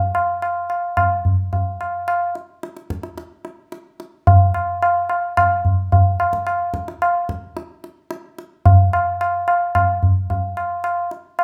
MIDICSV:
0, 0, Header, 1, 2, 480
1, 0, Start_track
1, 0, Tempo, 547945
1, 1822, Time_signature, 4, 2, 24, 8
1, 10021, End_track
2, 0, Start_track
2, 0, Title_t, "Tabla"
2, 129, Note_on_c, 9, 60, 61
2, 217, Note_off_c, 9, 60, 0
2, 371, Note_on_c, 9, 60, 68
2, 459, Note_off_c, 9, 60, 0
2, 611, Note_on_c, 9, 60, 57
2, 699, Note_off_c, 9, 60, 0
2, 850, Note_on_c, 9, 60, 73
2, 850, Note_on_c, 9, 64, 73
2, 937, Note_off_c, 9, 60, 0
2, 937, Note_off_c, 9, 64, 0
2, 1095, Note_on_c, 9, 64, 51
2, 1183, Note_off_c, 9, 64, 0
2, 1338, Note_on_c, 9, 63, 72
2, 1338, Note_on_c, 9, 64, 65
2, 1425, Note_off_c, 9, 63, 0
2, 1425, Note_off_c, 9, 64, 0
2, 1582, Note_on_c, 9, 60, 60
2, 1670, Note_off_c, 9, 60, 0
2, 1820, Note_on_c, 9, 60, 80
2, 1908, Note_off_c, 9, 60, 0
2, 2062, Note_on_c, 9, 62, 55
2, 2150, Note_off_c, 9, 62, 0
2, 2306, Note_on_c, 9, 62, 66
2, 2394, Note_off_c, 9, 62, 0
2, 2423, Note_on_c, 9, 62, 52
2, 2510, Note_off_c, 9, 62, 0
2, 2543, Note_on_c, 9, 37, 56
2, 2630, Note_off_c, 9, 37, 0
2, 2658, Note_on_c, 9, 62, 61
2, 2745, Note_off_c, 9, 62, 0
2, 2782, Note_on_c, 9, 62, 76
2, 2870, Note_off_c, 9, 62, 0
2, 3019, Note_on_c, 9, 62, 58
2, 3107, Note_off_c, 9, 62, 0
2, 3260, Note_on_c, 9, 62, 73
2, 3348, Note_off_c, 9, 62, 0
2, 3502, Note_on_c, 9, 62, 65
2, 3590, Note_off_c, 9, 62, 0
2, 3742, Note_on_c, 9, 63, 107
2, 3742, Note_on_c, 9, 64, 92
2, 3829, Note_off_c, 9, 63, 0
2, 3829, Note_off_c, 9, 64, 0
2, 3981, Note_on_c, 9, 60, 72
2, 4068, Note_off_c, 9, 60, 0
2, 4227, Note_on_c, 9, 60, 73
2, 4314, Note_off_c, 9, 60, 0
2, 4463, Note_on_c, 9, 60, 60
2, 4551, Note_off_c, 9, 60, 0
2, 4707, Note_on_c, 9, 60, 87
2, 4707, Note_on_c, 9, 64, 67
2, 4794, Note_off_c, 9, 60, 0
2, 4794, Note_off_c, 9, 64, 0
2, 4947, Note_on_c, 9, 64, 52
2, 5035, Note_off_c, 9, 64, 0
2, 5189, Note_on_c, 9, 63, 76
2, 5189, Note_on_c, 9, 64, 67
2, 5277, Note_off_c, 9, 63, 0
2, 5277, Note_off_c, 9, 64, 0
2, 5429, Note_on_c, 9, 60, 63
2, 5517, Note_off_c, 9, 60, 0
2, 5544, Note_on_c, 9, 37, 59
2, 5632, Note_off_c, 9, 37, 0
2, 5664, Note_on_c, 9, 60, 73
2, 5752, Note_off_c, 9, 60, 0
2, 5901, Note_on_c, 9, 37, 57
2, 5989, Note_off_c, 9, 37, 0
2, 6028, Note_on_c, 9, 62, 63
2, 6115, Note_off_c, 9, 62, 0
2, 6149, Note_on_c, 9, 60, 69
2, 6237, Note_off_c, 9, 60, 0
2, 6387, Note_on_c, 9, 37, 59
2, 6475, Note_off_c, 9, 37, 0
2, 6628, Note_on_c, 9, 62, 77
2, 6715, Note_off_c, 9, 62, 0
2, 6867, Note_on_c, 9, 62, 60
2, 6955, Note_off_c, 9, 62, 0
2, 7100, Note_on_c, 9, 62, 75
2, 7188, Note_off_c, 9, 62, 0
2, 7345, Note_on_c, 9, 62, 63
2, 7433, Note_off_c, 9, 62, 0
2, 7582, Note_on_c, 9, 63, 97
2, 7582, Note_on_c, 9, 64, 93
2, 7669, Note_off_c, 9, 63, 0
2, 7669, Note_off_c, 9, 64, 0
2, 7826, Note_on_c, 9, 60, 68
2, 7913, Note_off_c, 9, 60, 0
2, 8067, Note_on_c, 9, 60, 79
2, 8155, Note_off_c, 9, 60, 0
2, 8302, Note_on_c, 9, 60, 68
2, 8390, Note_off_c, 9, 60, 0
2, 8541, Note_on_c, 9, 60, 82
2, 8541, Note_on_c, 9, 64, 81
2, 8628, Note_off_c, 9, 60, 0
2, 8628, Note_off_c, 9, 64, 0
2, 8783, Note_on_c, 9, 64, 57
2, 8871, Note_off_c, 9, 64, 0
2, 9023, Note_on_c, 9, 63, 76
2, 9023, Note_on_c, 9, 64, 71
2, 9111, Note_off_c, 9, 63, 0
2, 9111, Note_off_c, 9, 64, 0
2, 9260, Note_on_c, 9, 60, 60
2, 9347, Note_off_c, 9, 60, 0
2, 9495, Note_on_c, 9, 60, 74
2, 9583, Note_off_c, 9, 60, 0
2, 9735, Note_on_c, 9, 62, 55
2, 9822, Note_off_c, 9, 62, 0
2, 9975, Note_on_c, 9, 60, 68
2, 10021, Note_off_c, 9, 60, 0
2, 10021, End_track
0, 0, End_of_file